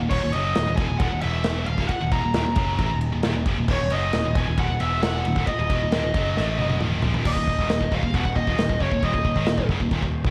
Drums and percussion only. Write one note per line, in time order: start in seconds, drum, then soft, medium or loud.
0.10 kick loud
0.10 crash loud
0.33 ride medium
0.55 snare loud
0.55 ride loud
0.77 kick loud
0.77 ride medium
1.00 kick loud
1.00 ride loud
1.22 ride medium
1.44 snare loud
1.44 ride loud
1.66 ride medium
1.78 kick loud
1.89 kick loud
1.89 ride loud
2.11 kick loud
2.11 ride medium
2.34 snare loud
2.34 ride medium
2.56 kick loud
2.56 ride medium
2.79 kick loud
2.79 ride loud
3.01 ride medium
3.23 snare loud
3.23 ride medium
3.46 kick loud
3.46 ride medium
3.68 kick loud
3.68 crash loud
3.90 ride medium
4.13 snare medium
4.13 ride loud
4.35 kick loud
4.35 ride medium
4.58 kick loud
4.58 ride loud
4.80 ride medium
5.03 snare loud
5.03 ride loud
5.25 ride medium
5.36 kick loud
5.47 kick medium
5.47 ride loud
5.70 kick loud
5.70 ride medium
5.92 snare loud
5.92 ride medium
6.14 kick loud
6.14 ride medium
6.37 snare medium
6.59 high tom medium
6.70 high tom medium
6.81 mid tom medium
7.02 floor tom loud
7.14 floor tom medium
7.25 kick loud
7.25 crash loud
7.25 crash medium
7.36 kick medium
7.47 kick medium
7.59 kick medium
7.69 snare loud
7.69 crash medium
7.81 kick loud
7.92 kick loud
8.03 kick medium
8.14 kick loud
8.14 crash medium
8.25 kick medium
8.36 kick medium
8.47 kick medium
8.58 snare loud
8.58 crash medium
8.69 kick loud
8.80 kick medium
8.92 kick medium
9.03 kick medium
9.03 crash medium
9.14 kick medium
9.25 kick medium
9.36 kick medium
9.46 snare loud
9.46 crash medium
9.58 kick medium
9.69 kick loud
9.80 kick medium
9.91 kick loud
9.91 crash medium
10.02 kick medium
10.25 kick loud